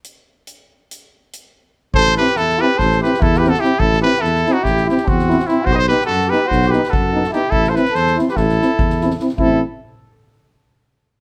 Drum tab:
HH |x---x---x---x-----|------------------|------------------|------------------|
SD |------------------|-ooooo--oooo-oooo-|-oooooo-oooo-oooo-|-oooooo-oooo---oo-|
BD |------------------|o-------o---o-----|o-------o---o-----|o-------o---o-----|

HH |------------------|------------------|
SD |-oooooooooo--ooooo|------------------|
BD |o-------o---o-----|o-----------------|